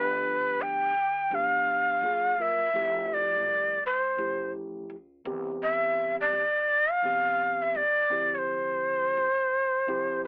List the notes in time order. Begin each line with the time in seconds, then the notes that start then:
Already playing: G1 F3 B3 D4 G4 B4
0.60 D2 G5
1.31 B1 F3 A3 D4 G4
1.35 B3 F5
2.01 F#1 F#3 A#3 F4 G#4
2.38 F#3 A#3 F4 A#4 E5
2.73 F1 F3 A3 E4 G4
3.14 D5
3.46 C2
3.86 C5
4.17 A1 F3 A3 E4 G4
4.90 C#2
5.25 C2 D#3 B3 C4 G4
5.31 E3
5.63 E5
6.21 D5
6.32 G1
6.91 F5
7.03 B1 E3 B3 C4 G4
7.62 E5
7.75 D#2 D5
8.10 D2 F3 C4 E4 G4
8.35 C5 C#5
9.17 A1
9.87 C2 F3 C4 E4 G4